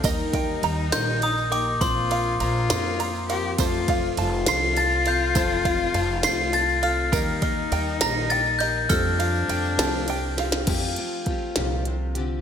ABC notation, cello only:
X:1
M:6/8
L:1/8
Q:3/8=68
K:Fmix
V:1 name="Cello"
E6 | F2 F3 G | F2 F4- | F6 |
E6 | D4- D C | z6 |]